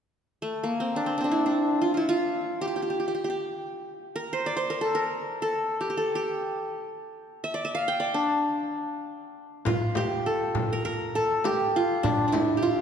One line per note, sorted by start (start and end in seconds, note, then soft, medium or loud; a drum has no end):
0.42 0.70 A3 medium
0.64 2.35 A#3 medium
0.80 1.06 C4 medium
0.96 1.17 D4 medium
1.06 1.20 C4 medium
1.18 2.81 C4 medium
1.18 1.24 D4 medium
1.24 1.46 D4 medium
1.31 1.88 E4 medium
1.46 2.95 D4 medium
1.82 1.94 F4 medium
1.94 2.15 E4 medium
1.94 2.03 F4 medium
2.09 3.44 F4 medium
2.61 2.67 G4 medium
2.67 2.76 G4 soft
2.76 2.82 G4 soft
2.82 2.90 G4 soft
2.90 2.99 G4 medium
3.00 3.07 G4 soft
3.08 3.14 G4 medium
3.15 3.24 G4 soft
3.24 3.29 G4 medium
3.30 4.55 G4 medium
4.16 4.70 A#4 medium
4.33 4.56 C5 medium
4.46 5.45 D5 medium
4.57 5.62 C5 medium
4.70 4.87 A#4 medium
4.81 5.01 A4 medium
4.95 5.48 A#4 medium
5.42 5.97 A4 medium
5.81 5.89 G4 medium
5.90 6.15 G4 soft
5.97 7.14 A4 medium
6.15 7.41 G4 medium
7.44 7.64 E5 medium
7.54 7.99 D5 medium
7.65 7.81 E5 medium
7.75 8.64 F5 medium
7.88 8.71 G5 medium
8.00 8.98 D5 medium
8.14 9.64 D4 medium
9.65 11.01 F4 medium
9.65 frame drum medium
9.65 darbuka dum medium
9.95 11.22 G4 medium
9.95 darbuka tek medium
9.95 frame drum medium
10.26 10.79 A4 medium
10.55 frame drum medium
10.55 darbuka dum medium
10.73 10.85 A#4 medium
10.85 11.21 A#4 medium
10.85 darbuka ka soft
11.15 12.32 A4 medium
11.44 12.57 G4 medium
11.44 darbuka tek medium
11.44 frame drum medium
11.76 12.38 F4 medium
12.03 12.27 D4 medium
12.03 darbuka dum medium
12.03 frame drum medium
12.28 12.81 D4 soft
12.32 12.68 E4 medium
12.32 darbuka tek medium
12.32 frame drum medium
12.57 12.81 G4 medium
12.62 12.81 F4 medium